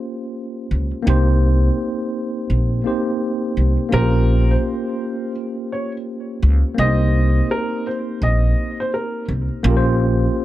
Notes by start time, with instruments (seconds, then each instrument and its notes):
Already playing: tine electric piano A#3 C#4 F4 G4 C5
0.71 upright bass C#2
1.02 tine electric piano A#3 C4 D#4
1.07 upright bass C2, tine electric piano G4 C5
2.50 upright bass A#1
2.84 tine electric piano A#3 C4 D#4 G4 C5
3.57 upright bass C2
3.89 upright bass A#1, tine electric piano A#3 C#4 F4
3.94 tine electric piano G4 C5, upright piano A#4
4.51 upright piano C5
5.72 upright piano C#5
6.43 upright bass C#2
6.75 upright bass C2, tine electric piano A#3 C4 C#4
6.79 tine electric piano G4 C5, upright piano D#5
6.84 tine electric piano D#4
7.51 upright piano A#4
7.87 upright piano C5
8.22 upright bass A#1, upright piano D#5
8.80 upright piano C5
8.94 upright piano A#4
9.29 upright bass C2
9.63 upright bass A#1, tine electric piano A#3 C#4 F4
9.69 tine electric piano G4 A#4
9.77 tine electric piano C5